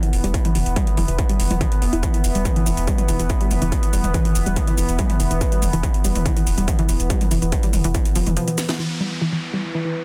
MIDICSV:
0, 0, Header, 1, 6, 480
1, 0, Start_track
1, 0, Key_signature, 1, "minor"
1, 0, Tempo, 422535
1, 386, Time_signature, 4, 2, 24, 8
1, 11411, End_track
2, 0, Start_track
2, 0, Title_t, "Synth drone"
2, 0, Program_c, 0, 95
2, 0, Note_on_c, 0, 52, 77
2, 0, Note_on_c, 0, 59, 79
2, 9973, Note_off_c, 0, 52, 0
2, 9975, Note_off_c, 0, 59, 0
2, 9987, Note_on_c, 0, 52, 75
2, 9988, Note_on_c, 0, 59, 75
2, 11411, Note_off_c, 0, 52, 0
2, 11411, Note_off_c, 0, 59, 0
2, 11411, End_track
3, 0, Start_track
3, 0, Title_t, "Synth arpeggio sound"
3, 0, Program_c, 1, 84
3, 31, Note_on_c, 1, 52, 78
3, 96, Note_off_c, 1, 52, 0
3, 270, Note_on_c, 1, 55, 75
3, 368, Note_off_c, 1, 55, 0
3, 509, Note_on_c, 1, 52, 100
3, 575, Note_off_c, 1, 52, 0
3, 627, Note_on_c, 1, 52, 77
3, 696, Note_off_c, 1, 52, 0
3, 866, Note_on_c, 1, 55, 83
3, 971, Note_off_c, 1, 55, 0
3, 1108, Note_on_c, 1, 52, 102
3, 1177, Note_off_c, 1, 52, 0
3, 1230, Note_on_c, 1, 52, 75
3, 1295, Note_off_c, 1, 52, 0
3, 1471, Note_on_c, 1, 55, 75
3, 1568, Note_off_c, 1, 55, 0
3, 1711, Note_on_c, 1, 53, 75
3, 1776, Note_off_c, 1, 53, 0
3, 1826, Note_on_c, 1, 52, 84
3, 1868, Note_off_c, 1, 52, 0
3, 2066, Note_on_c, 1, 59, 75
3, 2136, Note_off_c, 1, 59, 0
3, 2189, Note_on_c, 1, 64, 76
3, 2229, Note_off_c, 1, 64, 0
3, 2306, Note_on_c, 1, 52, 100
3, 2376, Note_off_c, 1, 52, 0
3, 2431, Note_on_c, 1, 52, 76
3, 2496, Note_off_c, 1, 52, 0
3, 2671, Note_on_c, 1, 55, 78
3, 2768, Note_off_c, 1, 55, 0
3, 2911, Note_on_c, 1, 52, 102
3, 2976, Note_off_c, 1, 52, 0
3, 3026, Note_on_c, 1, 52, 80
3, 3096, Note_off_c, 1, 52, 0
3, 3267, Note_on_c, 1, 55, 85
3, 3371, Note_off_c, 1, 55, 0
3, 3507, Note_on_c, 1, 52, 100
3, 3576, Note_off_c, 1, 52, 0
3, 3631, Note_on_c, 1, 52, 76
3, 3696, Note_off_c, 1, 52, 0
3, 3871, Note_on_c, 1, 55, 82
3, 3968, Note_off_c, 1, 55, 0
3, 4110, Note_on_c, 1, 52, 97
3, 4175, Note_off_c, 1, 52, 0
3, 4228, Note_on_c, 1, 52, 83
3, 4297, Note_off_c, 1, 52, 0
3, 4466, Note_on_c, 1, 55, 78
3, 4571, Note_off_c, 1, 55, 0
3, 4706, Note_on_c, 1, 52, 99
3, 4776, Note_off_c, 1, 52, 0
3, 4831, Note_on_c, 1, 52, 79
3, 4896, Note_off_c, 1, 52, 0
3, 5072, Note_on_c, 1, 55, 79
3, 5169, Note_off_c, 1, 55, 0
3, 5310, Note_on_c, 1, 52, 106
3, 5376, Note_off_c, 1, 52, 0
3, 5426, Note_on_c, 1, 52, 74
3, 5496, Note_off_c, 1, 52, 0
3, 5666, Note_on_c, 1, 55, 89
3, 5771, Note_off_c, 1, 55, 0
3, 5907, Note_on_c, 1, 52, 98
3, 5976, Note_off_c, 1, 52, 0
3, 6030, Note_on_c, 1, 52, 76
3, 6095, Note_off_c, 1, 52, 0
3, 6272, Note_on_c, 1, 55, 78
3, 6369, Note_off_c, 1, 55, 0
3, 6512, Note_on_c, 1, 52, 97
3, 6577, Note_off_c, 1, 52, 0
3, 6628, Note_on_c, 1, 52, 82
3, 6697, Note_off_c, 1, 52, 0
3, 6867, Note_on_c, 1, 55, 80
3, 6971, Note_off_c, 1, 55, 0
3, 7109, Note_on_c, 1, 52, 101
3, 7177, Note_off_c, 1, 52, 0
3, 7232, Note_on_c, 1, 52, 78
3, 7296, Note_off_c, 1, 52, 0
3, 7473, Note_on_c, 1, 55, 75
3, 7569, Note_off_c, 1, 55, 0
3, 7713, Note_on_c, 1, 52, 103
3, 7777, Note_off_c, 1, 52, 0
3, 7830, Note_on_c, 1, 52, 76
3, 7898, Note_off_c, 1, 52, 0
3, 8069, Note_on_c, 1, 55, 82
3, 8172, Note_off_c, 1, 55, 0
3, 8307, Note_on_c, 1, 52, 98
3, 8377, Note_off_c, 1, 52, 0
3, 8431, Note_on_c, 1, 52, 77
3, 8496, Note_off_c, 1, 52, 0
3, 8671, Note_on_c, 1, 55, 78
3, 8769, Note_off_c, 1, 55, 0
3, 8911, Note_on_c, 1, 52, 98
3, 8976, Note_off_c, 1, 52, 0
3, 9026, Note_on_c, 1, 52, 86
3, 9096, Note_off_c, 1, 52, 0
3, 9267, Note_on_c, 1, 53, 94
3, 9371, Note_off_c, 1, 53, 0
3, 9391, Note_on_c, 1, 52, 76
3, 9430, Note_off_c, 1, 52, 0
3, 9506, Note_on_c, 1, 53, 107
3, 9576, Note_off_c, 1, 53, 0
3, 9631, Note_on_c, 1, 52, 75
3, 9696, Note_off_c, 1, 52, 0
3, 9871, Note_on_c, 1, 52, 72
3, 9936, Note_off_c, 1, 52, 0
3, 9986, Note_on_c, 1, 52, 83
3, 10056, Note_off_c, 1, 52, 0
3, 10227, Note_on_c, 1, 55, 73
3, 10331, Note_off_c, 1, 55, 0
3, 10468, Note_on_c, 1, 52, 97
3, 10537, Note_off_c, 1, 52, 0
3, 10593, Note_on_c, 1, 52, 78
3, 10657, Note_off_c, 1, 52, 0
3, 10832, Note_on_c, 1, 55, 73
3, 10929, Note_off_c, 1, 55, 0
3, 11072, Note_on_c, 1, 52, 96
3, 11136, Note_off_c, 1, 52, 0
3, 11188, Note_on_c, 1, 52, 71
3, 11257, Note_off_c, 1, 52, 0
3, 11411, End_track
4, 0, Start_track
4, 0, Title_t, "Sub bass"
4, 0, Program_c, 2, 38
4, 145, Note_on_c, 2, 28, 97
4, 263, Note_off_c, 2, 28, 0
4, 270, Note_on_c, 2, 28, 83
4, 384, Note_off_c, 2, 28, 0
4, 625, Note_on_c, 2, 28, 100
4, 742, Note_off_c, 2, 28, 0
4, 749, Note_on_c, 2, 28, 79
4, 863, Note_off_c, 2, 28, 0
4, 1105, Note_on_c, 2, 28, 102
4, 1222, Note_off_c, 2, 28, 0
4, 1229, Note_on_c, 2, 28, 80
4, 1344, Note_off_c, 2, 28, 0
4, 1585, Note_on_c, 2, 28, 102
4, 1702, Note_off_c, 2, 28, 0
4, 1709, Note_on_c, 2, 28, 82
4, 1824, Note_off_c, 2, 28, 0
4, 2066, Note_on_c, 2, 28, 96
4, 2184, Note_off_c, 2, 28, 0
4, 2191, Note_on_c, 2, 28, 85
4, 2305, Note_off_c, 2, 28, 0
4, 2547, Note_on_c, 2, 28, 99
4, 2664, Note_off_c, 2, 28, 0
4, 2671, Note_on_c, 2, 28, 76
4, 2784, Note_off_c, 2, 28, 0
4, 3026, Note_on_c, 2, 28, 100
4, 3143, Note_off_c, 2, 28, 0
4, 3150, Note_on_c, 2, 28, 81
4, 3264, Note_off_c, 2, 28, 0
4, 3507, Note_on_c, 2, 28, 108
4, 3624, Note_off_c, 2, 28, 0
4, 3631, Note_on_c, 2, 28, 78
4, 3744, Note_off_c, 2, 28, 0
4, 3986, Note_on_c, 2, 28, 94
4, 4103, Note_off_c, 2, 28, 0
4, 4109, Note_on_c, 2, 28, 83
4, 4224, Note_off_c, 2, 28, 0
4, 4466, Note_on_c, 2, 28, 97
4, 4583, Note_off_c, 2, 28, 0
4, 4589, Note_on_c, 2, 28, 78
4, 4704, Note_off_c, 2, 28, 0
4, 4946, Note_on_c, 2, 28, 100
4, 5063, Note_off_c, 2, 28, 0
4, 5070, Note_on_c, 2, 28, 83
4, 5184, Note_off_c, 2, 28, 0
4, 5427, Note_on_c, 2, 28, 100
4, 5544, Note_off_c, 2, 28, 0
4, 5550, Note_on_c, 2, 28, 84
4, 5664, Note_off_c, 2, 28, 0
4, 5906, Note_on_c, 2, 28, 100
4, 6023, Note_off_c, 2, 28, 0
4, 6030, Note_on_c, 2, 28, 82
4, 6144, Note_off_c, 2, 28, 0
4, 6386, Note_on_c, 2, 28, 96
4, 6502, Note_off_c, 2, 28, 0
4, 6509, Note_on_c, 2, 28, 77
4, 6623, Note_off_c, 2, 28, 0
4, 6865, Note_on_c, 2, 28, 99
4, 6981, Note_off_c, 2, 28, 0
4, 6988, Note_on_c, 2, 28, 79
4, 7103, Note_off_c, 2, 28, 0
4, 7345, Note_on_c, 2, 28, 106
4, 7462, Note_off_c, 2, 28, 0
4, 7468, Note_on_c, 2, 28, 80
4, 7583, Note_off_c, 2, 28, 0
4, 7825, Note_on_c, 2, 28, 96
4, 7942, Note_off_c, 2, 28, 0
4, 7949, Note_on_c, 2, 28, 82
4, 8063, Note_off_c, 2, 28, 0
4, 8306, Note_on_c, 2, 28, 96
4, 8422, Note_off_c, 2, 28, 0
4, 8429, Note_on_c, 2, 28, 85
4, 8544, Note_off_c, 2, 28, 0
4, 8785, Note_on_c, 2, 28, 98
4, 8903, Note_off_c, 2, 28, 0
4, 8910, Note_on_c, 2, 28, 85
4, 9024, Note_off_c, 2, 28, 0
4, 9265, Note_on_c, 2, 28, 104
4, 9382, Note_off_c, 2, 28, 0
4, 9388, Note_on_c, 2, 28, 78
4, 9503, Note_off_c, 2, 28, 0
4, 11411, End_track
5, 0, Start_track
5, 0, Title_t, "Downlifter"
5, 0, Program_c, 3, 103
5, 9987, Note_on_c, 3, 60, 72
5, 11411, Note_off_c, 3, 60, 0
5, 11411, End_track
6, 0, Start_track
6, 0, Title_t, "Drums"
6, 32, Note_on_c, 9, 42, 56
6, 146, Note_off_c, 9, 42, 0
6, 148, Note_on_c, 9, 46, 93
6, 262, Note_off_c, 9, 46, 0
6, 272, Note_on_c, 9, 42, 53
6, 386, Note_off_c, 9, 42, 0
6, 387, Note_on_c, 9, 36, 119
6, 387, Note_on_c, 9, 42, 77
6, 501, Note_off_c, 9, 36, 0
6, 501, Note_off_c, 9, 42, 0
6, 511, Note_on_c, 9, 42, 51
6, 511, Note_on_c, 9, 45, 67
6, 625, Note_off_c, 9, 42, 0
6, 625, Note_off_c, 9, 45, 0
6, 626, Note_on_c, 9, 46, 107
6, 740, Note_off_c, 9, 46, 0
6, 751, Note_on_c, 9, 42, 52
6, 865, Note_off_c, 9, 42, 0
6, 867, Note_on_c, 9, 36, 127
6, 867, Note_on_c, 9, 42, 77
6, 980, Note_off_c, 9, 42, 0
6, 981, Note_off_c, 9, 36, 0
6, 990, Note_on_c, 9, 42, 52
6, 1104, Note_off_c, 9, 42, 0
6, 1106, Note_on_c, 9, 45, 64
6, 1106, Note_on_c, 9, 46, 91
6, 1220, Note_off_c, 9, 45, 0
6, 1220, Note_off_c, 9, 46, 0
6, 1230, Note_on_c, 9, 42, 52
6, 1343, Note_off_c, 9, 42, 0
6, 1346, Note_on_c, 9, 42, 75
6, 1347, Note_on_c, 9, 36, 121
6, 1460, Note_off_c, 9, 42, 0
6, 1461, Note_off_c, 9, 36, 0
6, 1470, Note_on_c, 9, 42, 55
6, 1584, Note_off_c, 9, 42, 0
6, 1586, Note_on_c, 9, 46, 115
6, 1699, Note_off_c, 9, 46, 0
6, 1711, Note_on_c, 9, 42, 55
6, 1711, Note_on_c, 9, 45, 68
6, 1825, Note_off_c, 9, 42, 0
6, 1825, Note_off_c, 9, 45, 0
6, 1827, Note_on_c, 9, 36, 126
6, 1827, Note_on_c, 9, 42, 73
6, 1940, Note_off_c, 9, 36, 0
6, 1940, Note_off_c, 9, 42, 0
6, 1952, Note_on_c, 9, 42, 53
6, 2065, Note_off_c, 9, 42, 0
6, 2066, Note_on_c, 9, 46, 94
6, 2180, Note_off_c, 9, 46, 0
6, 2191, Note_on_c, 9, 42, 49
6, 2304, Note_off_c, 9, 42, 0
6, 2307, Note_on_c, 9, 36, 124
6, 2307, Note_on_c, 9, 42, 76
6, 2307, Note_on_c, 9, 82, 42
6, 2420, Note_off_c, 9, 36, 0
6, 2420, Note_off_c, 9, 42, 0
6, 2420, Note_off_c, 9, 82, 0
6, 2432, Note_on_c, 9, 42, 51
6, 2432, Note_on_c, 9, 82, 29
6, 2545, Note_off_c, 9, 42, 0
6, 2545, Note_off_c, 9, 82, 0
6, 2546, Note_on_c, 9, 46, 107
6, 2546, Note_on_c, 9, 82, 74
6, 2660, Note_off_c, 9, 46, 0
6, 2660, Note_off_c, 9, 82, 0
6, 2670, Note_on_c, 9, 42, 48
6, 2670, Note_on_c, 9, 82, 31
6, 2784, Note_off_c, 9, 42, 0
6, 2784, Note_off_c, 9, 82, 0
6, 2786, Note_on_c, 9, 42, 78
6, 2786, Note_on_c, 9, 45, 73
6, 2786, Note_on_c, 9, 82, 45
6, 2787, Note_on_c, 9, 36, 117
6, 2899, Note_off_c, 9, 42, 0
6, 2899, Note_off_c, 9, 45, 0
6, 2899, Note_off_c, 9, 82, 0
6, 2900, Note_off_c, 9, 36, 0
6, 2910, Note_on_c, 9, 42, 50
6, 3024, Note_off_c, 9, 42, 0
6, 3026, Note_on_c, 9, 46, 96
6, 3026, Note_on_c, 9, 82, 75
6, 3139, Note_off_c, 9, 46, 0
6, 3139, Note_off_c, 9, 82, 0
6, 3150, Note_on_c, 9, 42, 50
6, 3150, Note_on_c, 9, 82, 33
6, 3264, Note_off_c, 9, 42, 0
6, 3264, Note_off_c, 9, 82, 0
6, 3265, Note_on_c, 9, 42, 76
6, 3265, Note_on_c, 9, 82, 42
6, 3266, Note_on_c, 9, 36, 122
6, 3379, Note_off_c, 9, 42, 0
6, 3379, Note_off_c, 9, 82, 0
6, 3380, Note_off_c, 9, 36, 0
6, 3390, Note_on_c, 9, 42, 51
6, 3390, Note_on_c, 9, 45, 71
6, 3390, Note_on_c, 9, 82, 30
6, 3504, Note_off_c, 9, 42, 0
6, 3504, Note_off_c, 9, 45, 0
6, 3504, Note_off_c, 9, 82, 0
6, 3505, Note_on_c, 9, 46, 110
6, 3505, Note_on_c, 9, 82, 72
6, 3619, Note_off_c, 9, 46, 0
6, 3619, Note_off_c, 9, 82, 0
6, 3629, Note_on_c, 9, 42, 54
6, 3629, Note_on_c, 9, 82, 33
6, 3743, Note_off_c, 9, 42, 0
6, 3743, Note_off_c, 9, 82, 0
6, 3745, Note_on_c, 9, 42, 72
6, 3745, Note_on_c, 9, 82, 41
6, 3746, Note_on_c, 9, 36, 125
6, 3858, Note_off_c, 9, 42, 0
6, 3858, Note_off_c, 9, 82, 0
6, 3860, Note_off_c, 9, 36, 0
6, 3870, Note_on_c, 9, 42, 53
6, 3983, Note_off_c, 9, 42, 0
6, 3986, Note_on_c, 9, 45, 69
6, 3986, Note_on_c, 9, 46, 91
6, 3986, Note_on_c, 9, 82, 70
6, 4099, Note_off_c, 9, 45, 0
6, 4099, Note_off_c, 9, 46, 0
6, 4099, Note_off_c, 9, 82, 0
6, 4110, Note_on_c, 9, 42, 50
6, 4110, Note_on_c, 9, 82, 31
6, 4223, Note_off_c, 9, 42, 0
6, 4223, Note_off_c, 9, 82, 0
6, 4226, Note_on_c, 9, 36, 111
6, 4226, Note_on_c, 9, 42, 78
6, 4226, Note_on_c, 9, 82, 43
6, 4340, Note_off_c, 9, 36, 0
6, 4340, Note_off_c, 9, 42, 0
6, 4340, Note_off_c, 9, 82, 0
6, 4351, Note_on_c, 9, 42, 50
6, 4351, Note_on_c, 9, 82, 32
6, 4464, Note_off_c, 9, 42, 0
6, 4464, Note_off_c, 9, 82, 0
6, 4467, Note_on_c, 9, 46, 101
6, 4467, Note_on_c, 9, 82, 76
6, 4580, Note_off_c, 9, 46, 0
6, 4580, Note_off_c, 9, 82, 0
6, 4590, Note_on_c, 9, 42, 47
6, 4590, Note_on_c, 9, 45, 67
6, 4590, Note_on_c, 9, 82, 30
6, 4704, Note_off_c, 9, 42, 0
6, 4704, Note_off_c, 9, 45, 0
6, 4704, Note_off_c, 9, 82, 0
6, 4706, Note_on_c, 9, 36, 119
6, 4706, Note_on_c, 9, 42, 75
6, 4706, Note_on_c, 9, 82, 45
6, 4819, Note_off_c, 9, 42, 0
6, 4819, Note_off_c, 9, 82, 0
6, 4820, Note_off_c, 9, 36, 0
6, 4830, Note_on_c, 9, 42, 51
6, 4944, Note_off_c, 9, 42, 0
6, 4945, Note_on_c, 9, 46, 87
6, 4945, Note_on_c, 9, 82, 77
6, 5059, Note_off_c, 9, 46, 0
6, 5059, Note_off_c, 9, 82, 0
6, 5070, Note_on_c, 9, 42, 53
6, 5070, Note_on_c, 9, 82, 33
6, 5184, Note_off_c, 9, 42, 0
6, 5184, Note_off_c, 9, 82, 0
6, 5185, Note_on_c, 9, 42, 73
6, 5185, Note_on_c, 9, 45, 66
6, 5185, Note_on_c, 9, 82, 44
6, 5187, Note_on_c, 9, 36, 119
6, 5299, Note_off_c, 9, 42, 0
6, 5299, Note_off_c, 9, 45, 0
6, 5299, Note_off_c, 9, 82, 0
6, 5300, Note_off_c, 9, 36, 0
6, 5310, Note_on_c, 9, 42, 51
6, 5310, Note_on_c, 9, 82, 31
6, 5424, Note_off_c, 9, 42, 0
6, 5424, Note_off_c, 9, 82, 0
6, 5426, Note_on_c, 9, 46, 105
6, 5426, Note_on_c, 9, 82, 78
6, 5540, Note_off_c, 9, 46, 0
6, 5540, Note_off_c, 9, 82, 0
6, 5551, Note_on_c, 9, 42, 54
6, 5551, Note_on_c, 9, 82, 35
6, 5665, Note_off_c, 9, 42, 0
6, 5665, Note_off_c, 9, 82, 0
6, 5665, Note_on_c, 9, 42, 75
6, 5665, Note_on_c, 9, 82, 43
6, 5667, Note_on_c, 9, 36, 111
6, 5779, Note_off_c, 9, 42, 0
6, 5779, Note_off_c, 9, 82, 0
6, 5781, Note_off_c, 9, 36, 0
6, 5790, Note_on_c, 9, 42, 52
6, 5790, Note_on_c, 9, 45, 71
6, 5904, Note_off_c, 9, 42, 0
6, 5904, Note_off_c, 9, 45, 0
6, 5905, Note_on_c, 9, 46, 89
6, 5905, Note_on_c, 9, 82, 76
6, 6019, Note_off_c, 9, 46, 0
6, 6019, Note_off_c, 9, 82, 0
6, 6030, Note_on_c, 9, 42, 52
6, 6030, Note_on_c, 9, 82, 33
6, 6143, Note_off_c, 9, 42, 0
6, 6143, Note_off_c, 9, 82, 0
6, 6147, Note_on_c, 9, 36, 111
6, 6147, Note_on_c, 9, 42, 76
6, 6147, Note_on_c, 9, 82, 44
6, 6260, Note_off_c, 9, 36, 0
6, 6260, Note_off_c, 9, 42, 0
6, 6260, Note_off_c, 9, 82, 0
6, 6271, Note_on_c, 9, 42, 53
6, 6271, Note_on_c, 9, 82, 31
6, 6385, Note_off_c, 9, 42, 0
6, 6385, Note_off_c, 9, 82, 0
6, 6387, Note_on_c, 9, 45, 65
6, 6387, Note_on_c, 9, 46, 100
6, 6387, Note_on_c, 9, 82, 74
6, 6501, Note_off_c, 9, 45, 0
6, 6501, Note_off_c, 9, 46, 0
6, 6501, Note_off_c, 9, 82, 0
6, 6512, Note_on_c, 9, 42, 49
6, 6512, Note_on_c, 9, 82, 31
6, 6626, Note_off_c, 9, 42, 0
6, 6626, Note_off_c, 9, 82, 0
6, 6627, Note_on_c, 9, 36, 114
6, 6628, Note_on_c, 9, 42, 80
6, 6628, Note_on_c, 9, 82, 47
6, 6740, Note_off_c, 9, 36, 0
6, 6742, Note_off_c, 9, 42, 0
6, 6742, Note_off_c, 9, 82, 0
6, 6751, Note_on_c, 9, 42, 51
6, 6865, Note_off_c, 9, 42, 0
6, 6867, Note_on_c, 9, 46, 85
6, 6867, Note_on_c, 9, 82, 79
6, 6980, Note_off_c, 9, 46, 0
6, 6980, Note_off_c, 9, 82, 0
6, 6992, Note_on_c, 9, 42, 52
6, 6992, Note_on_c, 9, 45, 70
6, 6992, Note_on_c, 9, 82, 34
6, 7105, Note_off_c, 9, 42, 0
6, 7105, Note_off_c, 9, 45, 0
6, 7105, Note_off_c, 9, 82, 0
6, 7107, Note_on_c, 9, 36, 112
6, 7108, Note_on_c, 9, 42, 76
6, 7108, Note_on_c, 9, 82, 45
6, 7221, Note_off_c, 9, 36, 0
6, 7222, Note_off_c, 9, 42, 0
6, 7222, Note_off_c, 9, 82, 0
6, 7232, Note_on_c, 9, 42, 50
6, 7232, Note_on_c, 9, 82, 32
6, 7345, Note_off_c, 9, 42, 0
6, 7345, Note_off_c, 9, 82, 0
6, 7347, Note_on_c, 9, 46, 97
6, 7347, Note_on_c, 9, 82, 77
6, 7461, Note_off_c, 9, 46, 0
6, 7461, Note_off_c, 9, 82, 0
6, 7471, Note_on_c, 9, 42, 55
6, 7471, Note_on_c, 9, 82, 34
6, 7585, Note_off_c, 9, 42, 0
6, 7585, Note_off_c, 9, 82, 0
6, 7587, Note_on_c, 9, 36, 115
6, 7587, Note_on_c, 9, 42, 77
6, 7587, Note_on_c, 9, 45, 64
6, 7587, Note_on_c, 9, 82, 46
6, 7701, Note_off_c, 9, 36, 0
6, 7701, Note_off_c, 9, 42, 0
6, 7701, Note_off_c, 9, 45, 0
6, 7701, Note_off_c, 9, 82, 0
6, 7711, Note_on_c, 9, 42, 55
6, 7824, Note_off_c, 9, 42, 0
6, 7825, Note_on_c, 9, 46, 85
6, 7825, Note_on_c, 9, 82, 80
6, 7939, Note_off_c, 9, 46, 0
6, 7939, Note_off_c, 9, 82, 0
6, 7950, Note_on_c, 9, 42, 51
6, 7950, Note_on_c, 9, 82, 32
6, 8064, Note_off_c, 9, 42, 0
6, 8064, Note_off_c, 9, 82, 0
6, 8067, Note_on_c, 9, 36, 114
6, 8067, Note_on_c, 9, 42, 82
6, 8067, Note_on_c, 9, 82, 43
6, 8180, Note_off_c, 9, 36, 0
6, 8180, Note_off_c, 9, 42, 0
6, 8180, Note_off_c, 9, 82, 0
6, 8191, Note_on_c, 9, 42, 55
6, 8191, Note_on_c, 9, 45, 66
6, 8191, Note_on_c, 9, 82, 31
6, 8305, Note_off_c, 9, 42, 0
6, 8305, Note_off_c, 9, 45, 0
6, 8305, Note_off_c, 9, 82, 0
6, 8306, Note_on_c, 9, 46, 99
6, 8306, Note_on_c, 9, 82, 81
6, 8420, Note_off_c, 9, 46, 0
6, 8420, Note_off_c, 9, 82, 0
6, 8430, Note_on_c, 9, 42, 50
6, 8430, Note_on_c, 9, 82, 30
6, 8544, Note_off_c, 9, 42, 0
6, 8544, Note_off_c, 9, 82, 0
6, 8545, Note_on_c, 9, 42, 82
6, 8545, Note_on_c, 9, 82, 45
6, 8547, Note_on_c, 9, 36, 115
6, 8658, Note_off_c, 9, 42, 0
6, 8658, Note_off_c, 9, 82, 0
6, 8661, Note_off_c, 9, 36, 0
6, 8669, Note_on_c, 9, 42, 54
6, 8669, Note_on_c, 9, 82, 31
6, 8783, Note_off_c, 9, 42, 0
6, 8783, Note_off_c, 9, 82, 0
6, 8784, Note_on_c, 9, 45, 67
6, 8784, Note_on_c, 9, 46, 90
6, 8784, Note_on_c, 9, 82, 76
6, 8898, Note_off_c, 9, 45, 0
6, 8898, Note_off_c, 9, 46, 0
6, 8898, Note_off_c, 9, 82, 0
6, 8910, Note_on_c, 9, 42, 54
6, 8910, Note_on_c, 9, 82, 33
6, 9023, Note_off_c, 9, 42, 0
6, 9023, Note_off_c, 9, 82, 0
6, 9026, Note_on_c, 9, 42, 80
6, 9026, Note_on_c, 9, 82, 45
6, 9027, Note_on_c, 9, 36, 115
6, 9139, Note_off_c, 9, 42, 0
6, 9139, Note_off_c, 9, 82, 0
6, 9141, Note_off_c, 9, 36, 0
6, 9150, Note_on_c, 9, 42, 52
6, 9150, Note_on_c, 9, 82, 31
6, 9263, Note_off_c, 9, 42, 0
6, 9263, Note_off_c, 9, 82, 0
6, 9264, Note_on_c, 9, 46, 106
6, 9264, Note_on_c, 9, 82, 74
6, 9378, Note_off_c, 9, 46, 0
6, 9378, Note_off_c, 9, 82, 0
6, 9389, Note_on_c, 9, 42, 55
6, 9389, Note_on_c, 9, 45, 67
6, 9389, Note_on_c, 9, 82, 34
6, 9503, Note_off_c, 9, 42, 0
6, 9503, Note_off_c, 9, 45, 0
6, 9503, Note_off_c, 9, 82, 0
6, 9504, Note_on_c, 9, 42, 79
6, 9504, Note_on_c, 9, 82, 41
6, 9617, Note_off_c, 9, 42, 0
6, 9617, Note_off_c, 9, 82, 0
6, 9629, Note_on_c, 9, 42, 53
6, 9629, Note_on_c, 9, 82, 30
6, 9742, Note_off_c, 9, 42, 0
6, 9742, Note_off_c, 9, 82, 0
6, 9746, Note_on_c, 9, 38, 62
6, 9746, Note_on_c, 9, 46, 86
6, 9746, Note_on_c, 9, 82, 75
6, 9859, Note_off_c, 9, 38, 0
6, 9859, Note_off_c, 9, 46, 0
6, 9859, Note_off_c, 9, 82, 0
6, 9869, Note_on_c, 9, 38, 73
6, 9869, Note_on_c, 9, 42, 51
6, 9869, Note_on_c, 9, 82, 32
6, 9983, Note_off_c, 9, 38, 0
6, 9983, Note_off_c, 9, 42, 0
6, 9983, Note_off_c, 9, 82, 0
6, 11411, End_track
0, 0, End_of_file